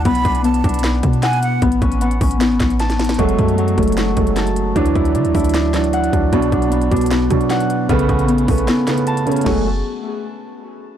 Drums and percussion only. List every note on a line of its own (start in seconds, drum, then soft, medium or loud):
0.05 kick loud
0.05 closed hi-hat medium
0.15 closed hi-hat medium
0.25 kick medium
0.25 closed hi-hat medium
0.35 closed hi-hat medium
0.44 closed hi-hat medium
0.54 closed hi-hat medium
0.64 kick loud
0.64 closed hi-hat medium
0.69 closed hi-hat medium
0.74 closed hi-hat medium
0.79 closed hi-hat loud
0.84 snare loud
0.84 clap medium
0.84 closed hi-hat medium
1.03 kick loud
1.03 closed hi-hat medium
1.13 closed hi-hat medium
1.23 snare medium
1.23 clap medium
1.23 closed hi-hat medium
1.33 closed hi-hat medium
1.43 closed hi-hat medium
1.62 kick loud
1.62 closed hi-hat medium
1.72 closed hi-hat medium
1.82 kick medium
1.82 closed hi-hat medium
1.92 closed hi-hat medium
2.01 closed hi-hat medium
2.11 closed hi-hat medium
2.21 kick loud
2.21 closed hi-hat medium
2.21 open hi-hat loud
2.31 closed hi-hat medium
2.41 snare loud
2.41 clap medium
2.41 closed hi-hat medium
2.60 kick loud
2.60 snare medium
2.60 clap medium
2.60 closed hi-hat medium
2.70 closed hi-hat medium
2.80 snare medium
2.80 closed hi-hat medium
2.90 snare medium
2.90 closed hi-hat medium
2.99 snare loud
2.99 closed hi-hat medium
3.04 closed hi-hat medium
3.09 snare loud
3.09 closed hi-hat medium
3.14 closed hi-hat medium
3.19 kick loud
3.19 closed hi-hat medium
3.29 closed hi-hat medium
3.39 kick medium
3.39 closed hi-hat medium
3.48 closed hi-hat medium
3.58 closed hi-hat medium
3.68 closed hi-hat medium
3.78 kick loud
3.78 closed hi-hat medium
3.83 closed hi-hat medium
3.88 closed hi-hat medium
3.92 closed hi-hat medium
3.97 snare loud
3.97 clap medium
3.97 closed hi-hat medium
4.17 kick loud
4.17 closed hi-hat medium
4.27 closed hi-hat medium
4.36 snare medium
4.36 clap medium
4.36 closed hi-hat medium
4.47 closed hi-hat medium
4.56 closed hi-hat medium
4.76 kick loud
4.76 closed hi-hat medium
4.86 closed hi-hat medium
4.95 kick medium
4.95 closed hi-hat soft
5.05 closed hi-hat medium
5.15 closed hi-hat medium
5.25 closed hi-hat medium
5.35 kick loud
5.35 closed hi-hat medium
5.35 open hi-hat medium
5.40 closed hi-hat medium
5.44 closed hi-hat medium
5.49 closed hi-hat medium
5.54 snare loud
5.54 clap medium
5.54 closed hi-hat medium
5.74 snare medium
5.74 clap medium
5.74 closed hi-hat medium
5.84 closed hi-hat medium
5.93 closed hi-hat medium
6.04 closed hi-hat medium
6.13 kick medium
6.13 closed hi-hat medium
6.33 kick loud
6.33 closed hi-hat medium
6.42 closed hi-hat medium
6.52 kick medium
6.52 closed hi-hat medium
6.62 closed hi-hat medium
6.72 closed hi-hat medium
6.82 closed hi-hat medium
6.91 kick loud
6.91 closed hi-hat medium
6.96 closed hi-hat medium
7.01 closed hi-hat medium
7.06 closed hi-hat medium
7.11 snare loud
7.11 clap medium
7.11 closed hi-hat medium
7.30 kick loud
7.30 closed hi-hat medium
7.41 closed hi-hat medium
7.50 snare medium
7.50 clap medium
7.50 closed hi-hat medium
7.60 closed hi-hat medium
7.70 closed hi-hat medium
7.89 kick loud
7.89 closed hi-hat medium
7.99 closed hi-hat medium
8.09 kick medium
8.09 closed hi-hat medium
8.19 closed hi-hat medium
8.28 closed hi-hat medium
8.38 closed hi-hat medium
8.48 kick loud
8.48 closed hi-hat medium
8.48 open hi-hat loud
8.58 closed hi-hat medium
8.68 snare loud
8.68 clap medium
8.68 closed hi-hat medium
8.87 snare medium
8.87 clap medium
8.87 closed hi-hat medium
8.98 closed hi-hat medium
9.07 closed hi-hat medium
9.17 closed hi-hat medium
9.27 closed hi-hat medium
9.32 closed hi-hat medium
9.36 closed hi-hat medium
9.41 closed hi-hat medium
9.46 kick loud
9.46 snare loud
9.46 crash medium